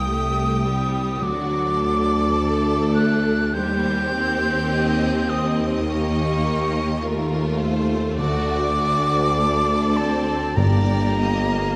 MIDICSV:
0, 0, Header, 1, 9, 480
1, 0, Start_track
1, 0, Tempo, 1147228
1, 988, Tempo, 1165049
1, 1476, Time_signature, 4, 2, 24, 8
1, 3388, Tempo, 1200000
1, 4817, End_track
2, 0, Start_track
2, 0, Title_t, "Flute"
2, 0, Program_c, 0, 73
2, 0, Note_on_c, 0, 87, 122
2, 513, Note_on_c, 0, 86, 126
2, 519, Note_off_c, 0, 87, 0
2, 1226, Note_off_c, 0, 86, 0
2, 1228, Note_on_c, 0, 90, 117
2, 1472, Note_on_c, 0, 91, 127
2, 1478, Note_off_c, 0, 90, 0
2, 2196, Note_on_c, 0, 87, 114
2, 2202, Note_off_c, 0, 91, 0
2, 2351, Note_off_c, 0, 87, 0
2, 2440, Note_on_c, 0, 85, 117
2, 3136, Note_off_c, 0, 85, 0
2, 3388, Note_on_c, 0, 86, 127
2, 4100, Note_on_c, 0, 81, 114
2, 4106, Note_off_c, 0, 86, 0
2, 4339, Note_on_c, 0, 82, 127
2, 4345, Note_off_c, 0, 81, 0
2, 4817, Note_off_c, 0, 82, 0
2, 4817, End_track
3, 0, Start_track
3, 0, Title_t, "Violin section"
3, 0, Program_c, 1, 48
3, 0, Note_on_c, 1, 79, 77
3, 508, Note_on_c, 1, 74, 78
3, 514, Note_off_c, 1, 79, 0
3, 1474, Note_off_c, 1, 74, 0
3, 1475, Note_on_c, 1, 72, 83
3, 1946, Note_off_c, 1, 72, 0
3, 1960, Note_on_c, 1, 75, 88
3, 2190, Note_off_c, 1, 75, 0
3, 2195, Note_on_c, 1, 75, 86
3, 2898, Note_off_c, 1, 75, 0
3, 2910, Note_on_c, 1, 70, 85
3, 3146, Note_on_c, 1, 72, 89
3, 3148, Note_off_c, 1, 70, 0
3, 3386, Note_off_c, 1, 72, 0
3, 3387, Note_on_c, 1, 74, 95
3, 4324, Note_off_c, 1, 74, 0
3, 4341, Note_on_c, 1, 74, 87
3, 4579, Note_off_c, 1, 74, 0
3, 4588, Note_on_c, 1, 75, 80
3, 4817, Note_off_c, 1, 75, 0
3, 4817, End_track
4, 0, Start_track
4, 0, Title_t, "Violin section"
4, 0, Program_c, 2, 48
4, 21, Note_on_c, 2, 67, 68
4, 499, Note_off_c, 2, 67, 0
4, 500, Note_on_c, 2, 66, 77
4, 736, Note_on_c, 2, 69, 78
4, 742, Note_off_c, 2, 66, 0
4, 1467, Note_on_c, 2, 67, 83
4, 1470, Note_off_c, 2, 69, 0
4, 2426, Note_off_c, 2, 67, 0
4, 2431, Note_on_c, 2, 67, 72
4, 2902, Note_off_c, 2, 67, 0
4, 2905, Note_on_c, 2, 65, 77
4, 3384, Note_off_c, 2, 65, 0
4, 3385, Note_on_c, 2, 66, 93
4, 3614, Note_off_c, 2, 66, 0
4, 3618, Note_on_c, 2, 66, 88
4, 3854, Note_on_c, 2, 69, 78
4, 3855, Note_off_c, 2, 66, 0
4, 4334, Note_on_c, 2, 67, 69
4, 4337, Note_off_c, 2, 69, 0
4, 4817, Note_off_c, 2, 67, 0
4, 4817, End_track
5, 0, Start_track
5, 0, Title_t, "Viola section"
5, 0, Program_c, 3, 48
5, 31, Note_on_c, 3, 57, 73
5, 268, Note_off_c, 3, 57, 0
5, 269, Note_on_c, 3, 55, 77
5, 510, Note_off_c, 3, 55, 0
5, 511, Note_on_c, 3, 54, 78
5, 985, Note_on_c, 3, 57, 84
5, 987, Note_off_c, 3, 54, 0
5, 1475, Note_off_c, 3, 57, 0
5, 1481, Note_on_c, 3, 55, 86
5, 1719, Note_on_c, 3, 60, 88
5, 1720, Note_off_c, 3, 55, 0
5, 2421, Note_off_c, 3, 60, 0
5, 2438, Note_on_c, 3, 58, 87
5, 2914, Note_off_c, 3, 58, 0
5, 2917, Note_on_c, 3, 57, 85
5, 3863, Note_off_c, 3, 57, 0
5, 3867, Note_on_c, 3, 57, 79
5, 4099, Note_off_c, 3, 57, 0
5, 4101, Note_on_c, 3, 60, 76
5, 4341, Note_off_c, 3, 60, 0
5, 4343, Note_on_c, 3, 58, 87
5, 4817, Note_off_c, 3, 58, 0
5, 4817, End_track
6, 0, Start_track
6, 0, Title_t, "Timpani"
6, 0, Program_c, 4, 47
6, 510, Note_on_c, 4, 50, 82
6, 1213, Note_off_c, 4, 50, 0
6, 3389, Note_on_c, 4, 50, 99
6, 4085, Note_off_c, 4, 50, 0
6, 4342, Note_on_c, 4, 43, 95
6, 4817, Note_off_c, 4, 43, 0
6, 4817, End_track
7, 0, Start_track
7, 0, Title_t, "Cello section"
7, 0, Program_c, 5, 48
7, 0, Note_on_c, 5, 36, 77
7, 491, Note_off_c, 5, 36, 0
7, 506, Note_on_c, 5, 38, 83
7, 1471, Note_on_c, 5, 39, 82
7, 1473, Note_off_c, 5, 38, 0
7, 3382, Note_on_c, 5, 38, 91
7, 3385, Note_off_c, 5, 39, 0
7, 4337, Note_on_c, 5, 43, 80
7, 4338, Note_off_c, 5, 38, 0
7, 4817, Note_off_c, 5, 43, 0
7, 4817, End_track
8, 0, Start_track
8, 0, Title_t, "Double bass section"
8, 0, Program_c, 6, 48
8, 0, Note_on_c, 6, 36, 86
8, 494, Note_off_c, 6, 36, 0
8, 511, Note_on_c, 6, 38, 80
8, 1475, Note_on_c, 6, 39, 92
8, 1476, Note_off_c, 6, 38, 0
8, 3388, Note_off_c, 6, 39, 0
8, 3390, Note_on_c, 6, 38, 104
8, 4341, Note_on_c, 6, 31, 93
8, 4342, Note_off_c, 6, 38, 0
8, 4817, Note_off_c, 6, 31, 0
8, 4817, End_track
9, 0, Start_track
9, 0, Title_t, "Tuba"
9, 0, Program_c, 7, 58
9, 0, Note_on_c, 7, 36, 73
9, 511, Note_on_c, 7, 38, 91
9, 517, Note_off_c, 7, 36, 0
9, 1474, Note_on_c, 7, 39, 81
9, 1480, Note_off_c, 7, 38, 0
9, 3388, Note_on_c, 7, 38, 87
9, 3394, Note_off_c, 7, 39, 0
9, 4339, Note_on_c, 7, 31, 93
9, 4345, Note_off_c, 7, 38, 0
9, 4817, Note_off_c, 7, 31, 0
9, 4817, End_track
0, 0, End_of_file